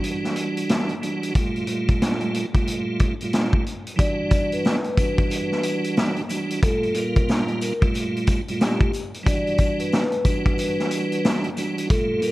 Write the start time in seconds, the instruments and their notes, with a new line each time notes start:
Already playing: tonewheel organ E3 G3 D4 F#4
0.04 closed hi-hat
0.24 snare, closed hi-hat
0.36 closed hi-hat
0.57 closed hi-hat
0.69 snare, closed hi-hat
0.89 closed hi-hat
1.02 tonewheel organ E3 G3 D4 F#4, closed hi-hat
1.23 closed hi-hat
1.35 tonewheel organ A#2 G3 A3 F4, kick, closed hi-hat
1.56 closed hi-hat
1.66 tonewheel organ A#2 G3 A3 F4, closed hi-hat
1.88 kick, closed hi-hat
2.02 snare, closed hi-hat
2.20 closed hi-hat
2.34 closed hi-hat
2.53 tonewheel organ A#2 G3 A3 F4, kick, closed hi-hat
2.67 closed hi-hat
2.99 kick, closed hi-hat
3.21 tonewheel organ A#2 G3 A3 F4, closed hi-hat
3.33 snare, closed hi-hat
3.53 kick
3.66 closed hi-hat
3.87 closed hi-hat
3.96 tonewheel organ E3 G3 D4 F#4, vibraphone D5, kick, closed hi-hat, sleigh bells
4.31 kick, closed hi-hat, sleigh bells
4.52 vibraphone B4, closed hi-hat
4.65 snare, sleigh bells
4.84 closed hi-hat
4.97 tonewheel organ E3 G3 D4 F#4, kick, closed hi-hat, sleigh bells
5.18 kick, closed hi-hat
5.30 closed hi-hat, sleigh bells
5.52 snare
5.63 closed hi-hat, sleigh bells
5.84 closed hi-hat
5.97 snare, sleigh bells
6.16 closed hi-hat
6.29 tonewheel organ E3 G3 D4 F#4, closed hi-hat, sleigh bells
6.50 closed hi-hat
6.63 tonewheel organ A#2 G3 A3 F4, vibraphone A4, kick, closed hi-hat, sleigh bells
6.83 closed hi-hat
6.93 tonewheel organ A#2 G3 A#3 F4, vibraphone A#4, closed hi-hat, sleigh bells
7.16 kick, closed hi-hat
7.29 snare, sleigh bells
7.48 closed hi-hat
7.61 vibraphone A#4, closed hi-hat, sleigh bells
7.80 tonewheel organ A#2 G3 A3 F4, kick, closed hi-hat
7.94 closed hi-hat, sleigh bells
8.16 closed hi-hat
8.27 kick, closed hi-hat, sleigh bells
8.48 tonewheel organ A#2 G3 A3 F4, closed hi-hat
8.60 vibraphone G4, snare, sleigh bells
8.80 kick, closed hi-hat
8.93 closed hi-hat, sleigh bells
9.14 closed hi-hat
9.23 tonewheel organ E3 G3 D4 F#4, vibraphone D5, kick, closed hi-hat, sleigh bells
9.47 closed hi-hat
9.58 kick, closed hi-hat, sleigh bells
9.79 vibraphone B4, closed hi-hat
9.92 snare, sleigh bells
10.12 closed hi-hat
10.25 tonewheel organ E3 G3 D4 F#4, kick, closed hi-hat, sleigh bells
10.46 kick, closed hi-hat
10.58 closed hi-hat, sleigh bells
10.79 snare, closed hi-hat
10.91 closed hi-hat, sleigh bells
11.12 closed hi-hat
11.25 snare, sleigh bells
11.44 closed hi-hat
11.57 tonewheel organ E3 G3 D4 F#4, closed hi-hat, sleigh bells
11.78 closed hi-hat
11.90 tonewheel organ A#2 G3 A3 F4, vibraphone A4, kick, closed hi-hat, sleigh bells
12.21 tonewheel organ A#2 G3 A#3 F4, vibraphone A#4, closed hi-hat, sleigh bells